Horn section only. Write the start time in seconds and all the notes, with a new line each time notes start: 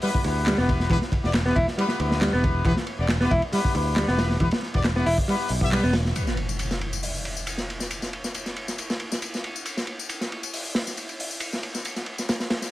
0.03 B3 E4 G4 B4
0.25 B3 E4 G4 B4
0.58 B3 E4 G4 B4
0.90 B3 E4 G4 B4
1.24 B3 E4 G4 D5
1.46 B3 E4 G4 B4
1.78 B3 E4 G4 B4
2.00 B3 E4 G4 B4
2.33 B3 E4 G4 B4
2.65 B3 E4 G4 B4
2.99 B3 E4 G4 D5
3.21 B3 E4 G4 B4
3.53 B3 E4 G4 B4
3.75 B3 E4 G4 B4
4.08 B3 E4 G4 B4
4.40 B3 E4 G4 B4
4.74 B3 E4 G4 D5
4.96 B3 E4 G4 B4
5.28 B3 E4 G4 B4
5.61 B3 E4 G4 E5
5.72 B3 E4 G4 B4